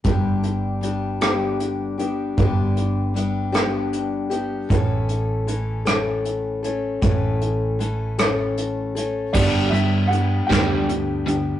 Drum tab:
CC |------|------|------|------|
HH |xxxxxx|xxxxxx|xxxxxx|xxxxxx|
SD |---r--|---r--|---r--|---r--|
BD |o-----|o-----|o-----|o-----|

CC |x-----|
HH |-xxxxx|
SD |---o--|
BD |o--o--|